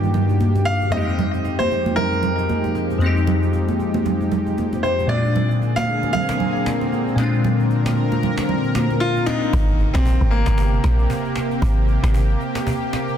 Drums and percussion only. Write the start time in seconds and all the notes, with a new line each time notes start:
0.04 cajon slap
0.14 cajon slap, low conga
0.29 cajon slap
0.40 cajon slap, high conga
0.56 cajon slap, high conga
0.66 cajon slap
0.82 cajon slap
0.92 cajon slap, high conga
1.08 cajon slap
1.19 cajon slap, low conga
1.34 cajon slap
1.45 cajon slap
1.60 cajon slap, high conga
1.71 cajon slap
1.86 cajon slap, high conga
1.97 cajon slap, low conga
2.12 cajon slap
2.23 cajon slap, low conga
2.38 cajon slap
2.49 cajon slap, high conga
2.64 cajon slap, high conga
2.75 cajon slap
2.90 cajon slap
3.01 cajon slap, high conga
3.16 cajon slap
3.27 cajon slap, low conga
3.42 cajon slap
3.53 cajon slap
3.68 cajon slap, high conga
3.79 cajon slap
3.94 cajon slap, high conga
4.05 cajon slap, low conga
4.21 cajon slap
4.32 cajon slap, low conga
4.47 cajon slap
4.58 cajon slap, high conga
4.73 cajon slap, high conga
4.84 cajon slap
4.99 cajon slap
5.09 cajon slap, high conga
5.25 cajon slap
5.36 cajon slap, low conga
5.51 cajon slap
5.62 cajon slap
5.77 cajon slap, high conga
5.88 cajon slap
6.03 cajon slap, high conga
6.14 cajon slap, low conga
6.29 cajon slap
6.40 cajon slap, low conga
6.55 cajon slap
6.66 cajon slap, high conga
6.81 cajon slap, high conga
6.92 cajon slap
7.07 cajon slap
7.18 cajon slap, high conga
7.34 cajon slap
7.45 cajon slap, low conga
7.60 cajon slap
7.70 cajon slap
7.86 cajon slap, high conga
7.97 cajon slap
8.12 cajon slap, high conga
8.23 cajon slap, low conga
8.38 cajon slap
8.49 cajon slap, low conga
8.64 cajon slap
8.75 cajon slap, high conga
8.90 cajon slap, high conga
9.01 cajon slap
9.16 cajon slap
9.27 cajon slap, high conga
9.42 cajon slap
9.53 cajon bass
9.68 cajon slap
9.79 cajon slap
9.95 cajon slap
10.05 cajon bass
10.31 cajon slap
10.46 cajon slap
10.58 cajon bass
10.73 cajon slap
10.84 cajon slap
10.99 cajon slap
11.10 cajon bass
11.25 cajon slap
11.36 cajon slap
11.51 cajon slap
11.62 cajon bass
11.77 cajon slap
11.88 cajon slap
12.04 cajon slap
12.14 cajon bass
12.30 cajon slap
12.40 cajon slap
12.55 cajon slap
12.67 cajon bass
12.82 cajon slap
12.93 cajon slap
13.08 cajon slap